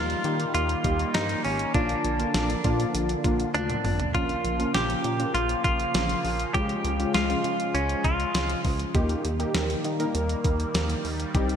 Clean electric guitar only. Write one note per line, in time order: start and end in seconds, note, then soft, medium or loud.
0.00 0.53 F4 medium
0.54 1.16 F4 medium
1.14 1.44 D#4 medium
1.45 1.74 C#4 medium
1.74 3.51 D4 medium
3.54 4.11 D4 medium
4.15 4.74 F4 loud
4.75 5.34 G4 loud
5.34 5.62 F4 loud
5.64 6.54 F4 loud
6.54 7.14 G4 loud
7.14 7.76 F4 medium
7.75 8.05 C#4 medium
8.04 8.60 F4 medium